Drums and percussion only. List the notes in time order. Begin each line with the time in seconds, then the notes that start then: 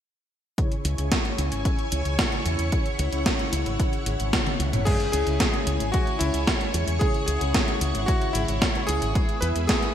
0.58 kick, closed hi-hat
0.72 closed hi-hat
0.85 closed hi-hat
0.98 closed hi-hat
1.12 kick, snare, closed hi-hat
1.25 closed hi-hat
1.38 closed hi-hat
1.52 closed hi-hat
1.65 kick, closed hi-hat
1.79 closed hi-hat
1.92 closed hi-hat
2.05 closed hi-hat
2.19 kick, snare, closed hi-hat
2.32 closed hi-hat
2.46 closed hi-hat
2.59 closed hi-hat
2.72 kick, closed hi-hat
2.86 closed hi-hat
2.99 closed hi-hat
3.13 closed hi-hat
3.26 kick, snare, closed hi-hat
3.39 closed hi-hat
3.53 closed hi-hat
3.66 closed hi-hat
3.80 kick, closed hi-hat
3.93 closed hi-hat
4.06 closed hi-hat
4.20 closed hi-hat
4.33 kick, snare, closed hi-hat, high tom
4.47 closed hi-hat, high tom
4.60 closed hi-hat
4.73 closed hi-hat, mid tom
4.87 kick, closed hi-hat, crash
5.00 closed hi-hat
5.13 closed hi-hat
5.27 closed hi-hat
5.40 kick, snare, closed hi-hat
5.54 closed hi-hat
5.67 closed hi-hat
5.80 closed hi-hat
5.94 kick, closed hi-hat
6.07 closed hi-hat
6.21 closed hi-hat
6.34 closed hi-hat
6.47 kick, snare, closed hi-hat
6.61 closed hi-hat
6.74 closed hi-hat
6.88 closed hi-hat
7.01 kick, closed hi-hat
7.14 closed hi-hat
7.28 closed hi-hat
7.41 closed hi-hat
7.54 kick, snare, closed hi-hat
7.68 closed hi-hat
7.81 closed hi-hat
7.95 closed hi-hat
8.08 kick, closed hi-hat
8.22 closed hi-hat
8.35 closed hi-hat
8.48 closed hi-hat
8.62 kick, snare, closed hi-hat
8.75 closed hi-hat
8.89 closed hi-hat
9.02 closed hi-hat
9.15 kick, closed hi-hat
9.29 closed hi-hat
9.42 closed hi-hat
9.56 closed hi-hat
9.69 kick, snare, closed hi-hat
9.83 closed hi-hat